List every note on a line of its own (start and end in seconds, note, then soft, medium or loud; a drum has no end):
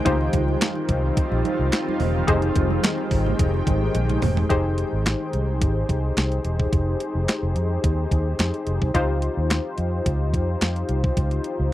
0.05 0.27 C#2 loud
0.05 2.26 D#3 medium
0.05 2.26 G3 medium
0.05 2.26 C4 medium
0.05 2.24 D#4 medium
0.05 2.24 F4 medium
0.05 2.26 F4 medium
0.05 2.24 G4 medium
0.05 2.24 C5 medium
0.05 kick loud
0.05 closed hi-hat medium
0.05 low conga medium
0.21 muted conga soft
0.33 0.55 C#2 medium
0.33 kick loud
0.33 closed hi-hat medium
0.33 high conga medium
0.48 high conga medium
0.61 snare loud
0.61 clap loud
0.61 closed hi-hat loud
0.61 high conga medium
0.75 muted conga soft
0.89 1.10 C2 loud
0.89 kick medium
0.89 closed hi-hat medium
1.17 kick loud
1.17 closed hi-hat loud
1.17 muted conga soft
1.32 1.42 A#1 loud
1.32 muted conga soft
1.45 closed hi-hat medium
1.45 high conga medium
1.59 1.69 C2 medium
1.72 snare loud
1.72 clap medium
1.72 closed hi-hat medium
1.88 muted conga soft
1.88 high conga medium
2.00 2.21 E1 medium
2.00 open hi-hat medium
2.00 low conga medium
2.27 2.49 F1 loud
2.27 4.48 D#3 medium
2.27 4.48 G#3 medium
2.27 4.46 D#4 medium
2.27 4.46 G4 medium
2.27 4.47 G#4 medium
2.27 4.47 C5 medium
2.27 4.48 G5 medium
2.27 kick loud
2.27 closed hi-hat loud
2.27 muted conga soft
2.27 low conga medium
2.42 closed hi-hat medium
2.56 2.77 F1 medium
2.56 kick loud
2.56 closed hi-hat medium
2.56 high conga medium
2.71 high conga medium
2.83 snare loud
2.83 clap loud
2.83 closed hi-hat loud
2.83 muted conga soft
2.83 high conga medium
2.98 muted conga soft
3.11 3.32 G#1 medium
3.11 kick medium
3.11 open hi-hat medium
3.26 low conga medium
3.39 3.60 F1 loud
3.39 kick loud
3.39 closed hi-hat loud
3.39 muted conga soft
3.54 muted conga soft
3.67 3.88 G#1 medium
3.67 kick loud
3.67 closed hi-hat medium
3.67 high conga medium
3.95 4.16 A#1 loud
3.95 closed hi-hat medium
3.95 high tom medium
3.95 muted conga soft
4.09 closed hi-hat soft
4.09 mid tom medium
4.09 muted conga soft
4.09 high conga medium
4.22 4.44 E1 medium
4.22 mid tom loud
4.22 open hi-hat medium
4.22 low conga medium
4.37 floor tom medium
4.50 4.82 F1 medium
4.50 8.90 D#4 medium
4.50 8.91 G4 medium
4.50 8.91 G#4 medium
4.50 8.91 C5 medium
4.50 kick loud
4.50 closed hi-hat medium
4.78 closed hi-hat medium
4.93 5.14 G#1 medium
5.06 snare loud
5.06 clap loud
5.06 closed hi-hat medium
5.33 5.63 C2 medium
5.33 closed hi-hat medium
5.61 5.83 G#1 medium
5.61 kick loud
5.61 closed hi-hat medium
5.89 6.10 C2 medium
5.89 kick medium
5.89 closed hi-hat medium
6.17 6.38 C2 medium
6.17 snare loud
6.17 clap medium
6.17 closed hi-hat medium
6.32 closed hi-hat soft
6.45 6.66 E1 medium
6.45 closed hi-hat medium
6.60 kick medium
6.73 6.94 F1 loud
6.73 kick loud
6.73 closed hi-hat medium
7.00 closed hi-hat medium
7.15 7.25 F1 loud
7.28 snare loud
7.28 clap medium
7.28 closed hi-hat medium
7.43 7.53 F1 medium
7.56 7.77 F2 medium
7.56 closed hi-hat medium
7.84 8.05 D#2 medium
7.84 kick loud
7.84 closed hi-hat medium
8.11 8.33 D#2 medium
8.11 kick medium
8.11 closed hi-hat medium
8.39 8.50 F2 medium
8.39 snare loud
8.39 clap medium
8.39 closed hi-hat medium
8.54 closed hi-hat soft
8.67 8.78 F1 medium
8.67 closed hi-hat medium
8.82 8.92 C2 medium
8.82 kick medium
8.94 9.27 C#2 loud
8.94 11.73 D#4 medium
8.94 11.73 F4 medium
8.94 11.73 G4 medium
8.94 11.73 C5 medium
8.94 kick loud
8.94 closed hi-hat medium
9.22 closed hi-hat medium
9.37 9.58 D#2 medium
9.50 snare loud
9.50 clap loud
9.50 closed hi-hat medium
9.78 9.99 F2 medium
9.78 closed hi-hat medium
10.06 10.34 C#2 loud
10.06 kick loud
10.06 closed hi-hat medium
10.34 10.55 F2 medium
10.34 kick medium
10.34 closed hi-hat medium
10.61 10.83 F2 medium
10.61 snare loud
10.61 clap medium
10.61 closed hi-hat medium
10.76 closed hi-hat soft
10.89 11.10 C2 medium
10.89 closed hi-hat medium
11.04 kick medium
11.17 11.38 C#2 medium
11.17 kick loud
11.17 closed hi-hat medium
11.31 closed hi-hat soft
11.44 closed hi-hat medium
11.60 11.69 C#2 medium